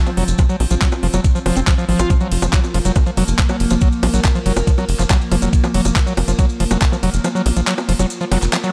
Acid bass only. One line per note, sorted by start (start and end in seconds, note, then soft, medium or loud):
0.07 0.11 F3 medium
0.17 0.24 F#3 medium
0.39 0.43 F3 medium
0.49 0.56 F#3 medium
0.71 0.75 F3 medium
0.82 0.88 F#3 medium
1.03 1.07 F3 medium
1.14 1.21 F#3 medium
1.35 1.39 F3 medium
1.46 1.56 F3 medium
1.57 1.61 C4 medium
1.67 1.74 F3 medium
1.78 1.85 F3 medium
1.89 1.99 F3 medium
1.99 2.10 F4 loud
2.10 2.14 F3 medium
2.21 2.28 F#3 medium
2.42 2.46 F3 medium
2.53 2.60 F#3 medium
2.74 2.79 F3 medium
2.85 2.92 F#3 medium
3.07 3.11 F3 medium
3.17 3.24 F#3 medium
3.39 3.43 F3 medium
3.49 3.56 F#3 medium
3.71 3.75 F3 medium
3.82 3.88 F#3 medium
4.03 4.07 F3 medium
4.14 4.21 F#3 medium
4.35 4.39 F3 medium
4.46 4.53 F#3 medium
4.67 4.71 F3 medium
4.78 4.85 F#3 medium
4.99 5.03 F3 medium
5.10 5.17 F#3 medium
5.32 5.36 F3 medium
5.42 5.49 F#3 medium
5.64 5.68 F3 medium
5.74 5.81 F#3 medium
5.96 6.00 F3 medium
6.07 6.13 F#3 medium
6.28 6.32 F3 medium
6.39 6.46 F#3 medium
6.60 6.64 F3 medium
6.71 6.78 F#3 medium
6.92 6.96 F3 medium
7.03 7.10 F#3 medium
7.24 7.29 F3 medium
7.35 7.42 F#3 medium
7.57 7.61 F3 medium
7.67 7.74 F#3 medium
7.89 7.93 F3 medium
7.99 8.06 F#3 medium
8.21 8.25 F3 medium
8.32 8.38 F#3 medium
8.53 8.57 F3 medium
8.64 8.71 F#3 medium